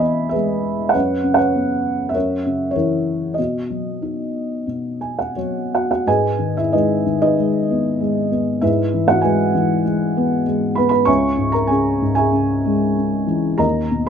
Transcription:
Already playing: E2 B2 E3 B3 B4 E5 G#5 B5
0.00 D#5
0.29 G#4 B4 E5
0.34 G#3
0.89 B4 C#5 F#5
0.94 F#2
1.24 C#3
1.34 C#5 F#5
1.38 B4
1.55 B3
2.09 E5
2.14 F#2 A#4 C#5
2.46 C#3
2.71 C#5
2.76 E3 E4 A#4
3.34 D#5
3.38 B2 F#4
3.70 F#3
4.02 D#4
4.67 B2
5.01 G#5
5.19 F#5
5.36 F#3 C#5
5.75 F#4 F#5
5.91 F#4 F#5
6.06 G#2 G#4 B4 D#5 G#5
6.39 D#3
6.57 E4 E5
6.73 G#3 D#4 B4 D#5
7.06 D#3
7.22 D#4 B4 D#5
7.37 G#3
7.71 B3
8.00 G#3
8.31 B3
8.61 G#2 E4 G#4 B4 E5
8.94 E3
9.08 F#4 F#5
9.21 G#3 G#4 B4 G#5
9.55 E3
9.85 G#3
10.17 B3
10.47 G#3
10.75 B3 B4 B5
10.89 B4 B5
11.05 C#2 C#5 E5 G#5 C#6
11.38 G#2
11.52 A#4 A#5
11.67 C#3 G#4 E5 G#5
12.01 G#2
12.15 G#4 E5 G#5
12.32 C#3
12.65 G#3
12.97 C#3
13.27 E3
13.58 D#2 A#4 D#5 A#5
13.91 B2

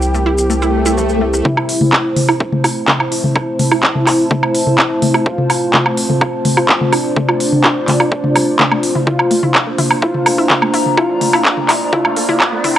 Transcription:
Already playing: C2 G3 C4 E4 G4 A#4 C5 G5
0.02 maracas
0.14 A3, maracas
0.26 E4
0.38 maracas
0.50 A3, swell, maracas
0.62 E4, maracas
0.86 E4, maracas
0.98 E3, maracas
1.09 maracas
1.21 A3
1.33 A3, maracas
1.45 A3 C4 E4 C5, kick, mid tom
1.55 E4 C5, low woodblock
1.69 open hi-hat
1.81 A3, mid tom
1.92 E4 A5, kick, clap, low woodblock
2.16 A3, open hi-hat, mid tom
2.29 E4, low woodblock
2.40 kick
2.52 A3, mid tom
2.64 E4, open hi-hat, low woodblock
2.88 A3, kick, clap, mid tom
3.00 E4, low woodblock
3.12 E4, open hi-hat
3.24 A3, mid tom
3.36 E4, kick, low woodblock
3.59 A3, open hi-hat, mid tom
3.72 E4, low woodblock
3.83 kick, clap
3.95 A3, mid tom
4.07 E4, clap, open hi-hat, low woodblock
4.31 A3, kick, mid tom
4.43 E4, low woodblock
4.55 open hi-hat
4.67 A3, mid tom
4.78 E4, kick, clap, low woodblock
5.02 A3, open hi-hat, mid tom
5.14 E4, low woodblock
5.26 F4, kick
5.38 A3, mid tom
5.50 F4, open hi-hat, low woodblock
5.74 A3, kick, clap, mid tom
5.86 F4, low woodblock
5.97 open hi-hat
6.10 A3, mid tom
6.21 F4, kick, low woodblock
6.45 A3, open hi-hat, mid tom
6.57 F4, low woodblock
6.69 kick, clap
6.81 A3, mid tom
6.93 D4 F4, open hi-hat, low woodblock
7.16 A3 D5, kick, mid tom
7.29 F4, low woodblock
7.40 open hi-hat
7.52 A3, mid tom
7.64 F4, kick, clap, low woodblock
7.88 A3, clap, open hi-hat, mid tom
8.00 F4, low woodblock
8.12 kick
8.24 A3, mid tom
8.36 G3, open hi-hat, low woodblock
8.59 A3, kick, clap, mid tom
8.72 A3, low woodblock
8.83 open hi-hat
8.95 E4, mid tom
9.07 A#3 D4 E4 F4 C5, kick, mid tom, riser
9.19 low woodblock
9.31 A3, open hi-hat
9.43 E4, mid tom
9.55 kick, clap, low woodblock
9.67 A3
9.78 E4, open hi-hat, mid tom
9.91 A#5, low woodblock
10.02 E4 F4, kick
10.14 mid tom
10.26 A3, open hi-hat, low woodblock
10.38 E4
10.50 kick, clap, mid tom
10.62 A3, low woodblock
10.74 E4, open hi-hat
10.86 mid tom
10.97 E4 F4 D5, kick, low woodblock
11.21 A3, open hi-hat, mid tom
11.33 E4, low woodblock
11.45 kick, clap
11.57 A3, mid tom
11.69 E4, clap, open hi-hat, low woodblock
11.93 E4 F4, kick, mid tom
12.05 low woodblock
12.16 A3, open hi-hat
12.29 E4, mid tom
12.40 kick, clap, low woodblock
12.53 A3
12.64 E4, open hi-hat, mid tom

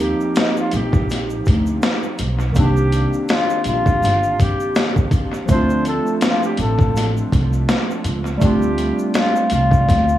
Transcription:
Already playing: D#2 F3 A#3 C4 D#4 G4
0.00 G4, shaker
0.20 shaker
0.35 D#4, snare, closed hi-hat, shaker
0.57 F4, shaker
0.71 A#1 G4, closed hi-hat, shaker
0.93 kick, shaker
1.10 snare, closed hi-hat, shaker
1.30 shaker
1.46 D2, kick, closed hi-hat, shaker
1.66 shaker
1.82 snare, closed hi-hat, shaker
2.03 shaker
2.18 B1, closed hi-hat, shaker
2.40 shaker
2.52 C2 D#3 A#3, kick, shaker
2.57 C4 D4 G4, closed hi-hat
2.62 G4
2.77 shaker
2.92 closed hi-hat, shaker
3.13 shaker
3.29 F4, snare, closed hi-hat, shaker
3.50 shaker
3.64 A#1, closed hi-hat, shaker
3.68 F4
3.86 kick, shaker
4.02 G1, snare, closed hi-hat, shaker
4.23 shaker
4.39 G4, kick, closed hi-hat, shaker
4.60 shaker
4.75 snare, closed hi-hat, shaker
4.96 kick, shaker
5.11 kick, closed hi-hat, shaker
5.34 shaker
5.45 D2 F3 A3, kick, closed hi-hat, shaker
5.50 C4 D4 C5
5.55 F4
5.70 shaker
5.85 A4, closed hi-hat, shaker
6.07 shaker
6.21 F4, snare, closed hi-hat, shaker
6.43 G4, shaker
6.57 A1 A4, closed hi-hat, shaker
6.79 kick, shaker
6.96 snare, closed hi-hat, shaker
7.17 shaker
7.32 C2, kick, closed hi-hat, shaker
7.53 shaker
7.69 snare, closed hi-hat, shaker
7.91 shaker
8.04 C#2, closed hi-hat, shaker
8.26 shaker
8.37 G3 A3, shaker
8.41 D2 C4 D4 G4, kick, closed hi-hat
8.47 F4
8.62 shaker
8.78 closed hi-hat, shaker
8.99 shaker
9.14 F4, snare, closed hi-hat, shaker
9.36 shaker
9.50 C2 F4, closed hi-hat, shaker
9.71 kick, shaker
9.89 D2, kick, snare, closed hi-hat, shaker
10.09 shaker

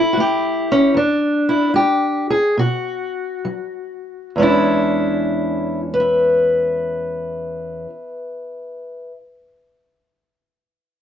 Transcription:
Already playing: E2 E4
0.13 F#4
0.17 A3 G4
0.72 C#4
0.94 E2 D4
1.49 E4
1.74 G#3 G4
2.30 G#4
2.57 B2 F#4
3.45 F#3
4.36 E2 G#3 C#4
4.42 D4 E4
5.94 B4
6.00 E5

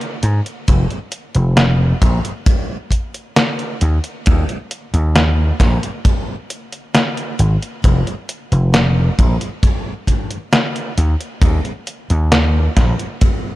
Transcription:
0.01 closed hi-hat
0.23 G#2, closed hi-hat
0.46 closed hi-hat
0.68 F1, kick, closed hi-hat
0.91 closed hi-hat
1.12 closed hi-hat
1.35 F1, closed hi-hat
1.57 snare, closed hi-hat
2.02 A#1, kick, closed hi-hat
2.25 closed hi-hat
2.46 kick, closed hi-hat
2.90 kick, closed hi-hat
3.14 closed hi-hat
3.36 snare, closed hi-hat
3.59 closed hi-hat
3.81 D#2, closed hi-hat
4.04 closed hi-hat
4.26 D#2, kick, closed hi-hat
4.49 closed hi-hat
4.71 closed hi-hat
4.94 D#2, closed hi-hat
5.16 snare, closed hi-hat
5.60 A#1, kick, snare, closed hi-hat
5.83 closed hi-hat
6.05 kick, closed hi-hat
6.50 closed hi-hat
6.73 closed hi-hat
6.95 snare, closed hi-hat
7.17 closed hi-hat
7.39 G#1, closed hi-hat
7.62 closed hi-hat
7.84 F1, kick, closed hi-hat
8.07 closed hi-hat
8.29 closed hi-hat
8.52 F1, closed hi-hat
8.74 snare, closed hi-hat
9.19 A#1, kick, closed hi-hat
9.41 closed hi-hat
9.63 kick, closed hi-hat
10.07 kick, closed hi-hat
10.31 closed hi-hat
10.53 snare, closed hi-hat
10.76 closed hi-hat
10.98 D#2, closed hi-hat
11.21 closed hi-hat
11.42 D#2, kick, closed hi-hat
11.65 closed hi-hat
11.87 closed hi-hat
12.10 D#2, closed hi-hat
12.32 snare, closed hi-hat
12.77 A#1, kick, snare, closed hi-hat
12.99 closed hi-hat
13.21 kick, closed hi-hat

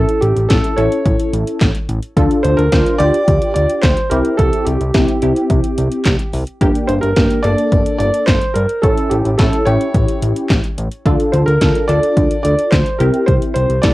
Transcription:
Already playing: C#4 E4 A4
0.09 closed hi-hat
0.21 A1 G4, closed hi-hat
0.36 A1, closed hi-hat
0.49 A1 C#4 E4 A4, kick, snare, closed hi-hat
0.64 closed hi-hat
0.77 A1 C#4 E4 A4 C#5, closed hi-hat
0.92 closed hi-hat
1.06 A1, kick, closed hi-hat
1.20 closed hi-hat
1.33 A1, closed hi-hat
1.47 closed hi-hat
1.61 A1, kick, snare, clap, closed hi-hat
1.75 closed hi-hat
1.89 A1, closed hi-hat
2.03 closed hi-hat
2.17 D2 D4 F4 A4, kick, closed hi-hat
2.31 closed hi-hat
2.43 D2 C5, closed hi-hat
2.57 D2 A#4, closed hi-hat
2.72 D2 D4 F4 C5, kick, snare, closed hi-hat
2.86 closed hi-hat
2.98 D2 D4 F4 G4 D5, closed hi-hat
3.14 closed hi-hat
3.28 D2, kick, closed hi-hat
3.42 closed hi-hat
3.54 D2 D5, closed hi-hat
3.70 closed hi-hat
3.82 D2 C5, kick, snare, clap, closed hi-hat
3.97 closed hi-hat
4.10 C2 C4 E4 G4 A#4, closed hi-hat
4.25 closed hi-hat
4.37 C2 A4, kick, closed hi-hat
4.53 closed hi-hat
4.65 C2 G4, closed hi-hat
4.81 C2, closed hi-hat
4.94 C2 C4 E4 G4, kick, snare, closed hi-hat
5.08 closed hi-hat
5.22 C2 C4 E4 G4, closed hi-hat
5.36 closed hi-hat
5.50 C2, kick, closed hi-hat
5.64 closed hi-hat
5.78 C2, closed hi-hat
5.92 closed hi-hat
6.06 C2, kick, snare, clap, closed hi-hat
6.19 closed hi-hat
6.33 C2, open hi-hat
6.47 closed hi-hat
6.61 G1 A#3 D4 G4, kick, closed hi-hat
6.75 closed hi-hat
6.88 G1 C5, closed hi-hat
7.01 G1 A#4, closed hi-hat
7.16 G1 A#3 D4 G4, kick, snare, closed hi-hat
7.31 closed hi-hat
7.43 G1 A#3 D4 A4 D5, closed hi-hat
7.58 closed hi-hat
7.72 G1, kick, closed hi-hat
7.86 closed hi-hat
7.99 G1 D5, closed hi-hat
8.14 closed hi-hat
8.26 G1 C5, kick, snare, clap, closed hi-hat
8.41 closed hi-hat
8.54 G2 A#4, closed hi-hat
8.69 closed hi-hat
8.82 A1 C#4 E4 A4, kick, closed hi-hat
8.98 closed hi-hat
9.10 A1 G4, closed hi-hat
9.25 A1, closed hi-hat
9.38 A1 C#4 E4 A4, kick, snare, closed hi-hat
9.53 closed hi-hat
9.65 A1 C#4 E4 G4 C#5, closed hi-hat
9.81 closed hi-hat
9.94 A1, kick, closed hi-hat
10.08 closed hi-hat
10.22 A1, closed hi-hat
10.36 closed hi-hat
10.50 A1, kick, snare, clap, closed hi-hat
10.64 closed hi-hat
10.78 A1, closed hi-hat
10.92 closed hi-hat
11.06 D2 D4 F4 A4, kick, closed hi-hat
11.20 closed hi-hat
11.32 D2 C5, closed hi-hat
11.46 D2 A#4, closed hi-hat
11.61 D2 D4 F4 A4, kick, snare, closed hi-hat
11.75 closed hi-hat
11.88 D2 D4 F4 A4 D5, closed hi-hat
12.03 closed hi-hat
12.17 D2, kick, closed hi-hat
12.31 closed hi-hat
12.43 D2 D5, closed hi-hat
12.59 closed hi-hat
12.71 D2 C5, kick, snare, clap, closed hi-hat
12.86 closed hi-hat
12.99 C2 C4 E4 G4 A#4, closed hi-hat
13.14 closed hi-hat
13.26 C2 C5, kick, closed hi-hat
13.42 closed hi-hat
13.54 C2 C5, closed hi-hat
13.69 C2, closed hi-hat
13.82 C2 C4 E4 A4 D5, kick, snare, closed hi-hat

